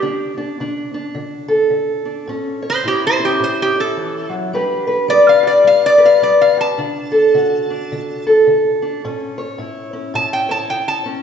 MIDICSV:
0, 0, Header, 1, 3, 480
1, 0, Start_track
1, 0, Key_signature, 2, "major"
1, 0, Tempo, 561798
1, 26, Time_signature, 4, 2, 24, 8
1, 9590, End_track
2, 0, Start_track
2, 0, Title_t, "Resonator guitar played with a steel bar"
2, 0, Program_c, 0, 25
2, 2305, Note_on_c, 0, 72, 95
2, 2442, Note_off_c, 0, 72, 0
2, 2457, Note_on_c, 0, 67, 76
2, 2598, Note_off_c, 0, 67, 0
2, 2621, Note_on_c, 0, 72, 82
2, 2760, Note_off_c, 0, 72, 0
2, 2776, Note_on_c, 0, 67, 70
2, 2918, Note_off_c, 0, 67, 0
2, 2936, Note_on_c, 0, 72, 65
2, 3078, Note_off_c, 0, 72, 0
2, 3096, Note_on_c, 0, 67, 75
2, 3238, Note_off_c, 0, 67, 0
2, 3249, Note_on_c, 0, 69, 66
2, 3705, Note_off_c, 0, 69, 0
2, 4356, Note_on_c, 0, 74, 91
2, 4508, Note_off_c, 0, 74, 0
2, 4520, Note_on_c, 0, 77, 71
2, 4671, Note_off_c, 0, 77, 0
2, 4675, Note_on_c, 0, 74, 66
2, 4828, Note_off_c, 0, 74, 0
2, 4847, Note_on_c, 0, 77, 72
2, 4994, Note_off_c, 0, 77, 0
2, 5007, Note_on_c, 0, 74, 85
2, 5154, Note_off_c, 0, 74, 0
2, 5173, Note_on_c, 0, 77, 72
2, 5317, Note_off_c, 0, 77, 0
2, 5326, Note_on_c, 0, 74, 74
2, 5474, Note_off_c, 0, 74, 0
2, 5480, Note_on_c, 0, 77, 71
2, 5631, Note_off_c, 0, 77, 0
2, 5645, Note_on_c, 0, 81, 84
2, 7045, Note_off_c, 0, 81, 0
2, 8674, Note_on_c, 0, 81, 74
2, 8827, Note_on_c, 0, 79, 69
2, 8828, Note_off_c, 0, 81, 0
2, 8981, Note_on_c, 0, 81, 65
2, 8984, Note_off_c, 0, 79, 0
2, 9141, Note_off_c, 0, 81, 0
2, 9142, Note_on_c, 0, 79, 71
2, 9296, Note_on_c, 0, 81, 71
2, 9301, Note_off_c, 0, 79, 0
2, 9552, Note_off_c, 0, 81, 0
2, 9590, End_track
3, 0, Start_track
3, 0, Title_t, "Steel-string acoustic guitar"
3, 0, Program_c, 1, 25
3, 18, Note_on_c, 1, 50, 69
3, 22, Note_on_c, 1, 62, 59
3, 310, Note_off_c, 1, 62, 0
3, 321, Note_on_c, 1, 62, 54
3, 465, Note_off_c, 1, 50, 0
3, 508, Note_off_c, 1, 62, 0
3, 514, Note_on_c, 1, 50, 61
3, 521, Note_on_c, 1, 62, 57
3, 794, Note_off_c, 1, 62, 0
3, 804, Note_on_c, 1, 62, 53
3, 952, Note_off_c, 1, 50, 0
3, 979, Note_on_c, 1, 50, 69
3, 1268, Note_on_c, 1, 69, 66
3, 1425, Note_off_c, 1, 50, 0
3, 1452, Note_on_c, 1, 50, 54
3, 1745, Note_off_c, 1, 62, 0
3, 1755, Note_on_c, 1, 62, 44
3, 1902, Note_off_c, 1, 50, 0
3, 1923, Note_off_c, 1, 62, 0
3, 1943, Note_on_c, 1, 45, 67
3, 1957, Note_on_c, 1, 61, 51
3, 2233, Note_off_c, 1, 69, 0
3, 2242, Note_on_c, 1, 73, 58
3, 2388, Note_off_c, 1, 45, 0
3, 2422, Note_on_c, 1, 45, 63
3, 2438, Note_on_c, 1, 64, 54
3, 2716, Note_off_c, 1, 61, 0
3, 2726, Note_on_c, 1, 61, 51
3, 2867, Note_off_c, 1, 45, 0
3, 2901, Note_on_c, 1, 45, 65
3, 3200, Note_off_c, 1, 64, 0
3, 3210, Note_on_c, 1, 64, 57
3, 3347, Note_off_c, 1, 45, 0
3, 3391, Note_on_c, 1, 52, 49
3, 3666, Note_off_c, 1, 52, 0
3, 3670, Note_on_c, 1, 54, 52
3, 3848, Note_off_c, 1, 73, 0
3, 3850, Note_off_c, 1, 61, 0
3, 3864, Note_off_c, 1, 54, 0
3, 3873, Note_on_c, 1, 55, 67
3, 3875, Note_off_c, 1, 64, 0
3, 3878, Note_on_c, 1, 62, 51
3, 3883, Note_on_c, 1, 71, 59
3, 3889, Note_on_c, 1, 67, 58
3, 4152, Note_off_c, 1, 71, 0
3, 4163, Note_on_c, 1, 71, 63
3, 4314, Note_off_c, 1, 55, 0
3, 4343, Note_on_c, 1, 55, 70
3, 4346, Note_off_c, 1, 71, 0
3, 4356, Note_on_c, 1, 71, 61
3, 4628, Note_off_c, 1, 67, 0
3, 4639, Note_on_c, 1, 67, 55
3, 4789, Note_off_c, 1, 55, 0
3, 4819, Note_on_c, 1, 55, 61
3, 5099, Note_off_c, 1, 71, 0
3, 5109, Note_on_c, 1, 71, 68
3, 5267, Note_off_c, 1, 55, 0
3, 5316, Note_on_c, 1, 55, 61
3, 5601, Note_off_c, 1, 67, 0
3, 5614, Note_on_c, 1, 67, 48
3, 5756, Note_off_c, 1, 55, 0
3, 5763, Note_off_c, 1, 71, 0
3, 5773, Note_off_c, 1, 62, 0
3, 5775, Note_off_c, 1, 67, 0
3, 5791, Note_on_c, 1, 50, 69
3, 5796, Note_on_c, 1, 62, 52
3, 6081, Note_on_c, 1, 69, 63
3, 6234, Note_off_c, 1, 50, 0
3, 6273, Note_on_c, 1, 50, 66
3, 6277, Note_on_c, 1, 66, 53
3, 6564, Note_off_c, 1, 62, 0
3, 6581, Note_on_c, 1, 62, 51
3, 6715, Note_off_c, 1, 50, 0
3, 6765, Note_on_c, 1, 50, 69
3, 7059, Note_off_c, 1, 69, 0
3, 7062, Note_on_c, 1, 69, 60
3, 7201, Note_off_c, 1, 50, 0
3, 7234, Note_on_c, 1, 50, 59
3, 7528, Note_off_c, 1, 62, 0
3, 7538, Note_on_c, 1, 62, 46
3, 7675, Note_off_c, 1, 50, 0
3, 7692, Note_off_c, 1, 66, 0
3, 7697, Note_off_c, 1, 62, 0
3, 7728, Note_on_c, 1, 45, 71
3, 7732, Note_on_c, 1, 61, 59
3, 8010, Note_off_c, 1, 69, 0
3, 8013, Note_on_c, 1, 73, 64
3, 8162, Note_off_c, 1, 45, 0
3, 8187, Note_on_c, 1, 45, 63
3, 8195, Note_on_c, 1, 64, 54
3, 8475, Note_off_c, 1, 61, 0
3, 8485, Note_on_c, 1, 61, 49
3, 8631, Note_off_c, 1, 45, 0
3, 8663, Note_on_c, 1, 45, 71
3, 8952, Note_off_c, 1, 73, 0
3, 8962, Note_on_c, 1, 73, 62
3, 9109, Note_off_c, 1, 45, 0
3, 9142, Note_on_c, 1, 45, 57
3, 9435, Note_off_c, 1, 61, 0
3, 9445, Note_on_c, 1, 61, 47
3, 9588, Note_off_c, 1, 45, 0
3, 9590, Note_off_c, 1, 61, 0
3, 9590, Note_off_c, 1, 64, 0
3, 9590, Note_off_c, 1, 73, 0
3, 9590, End_track
0, 0, End_of_file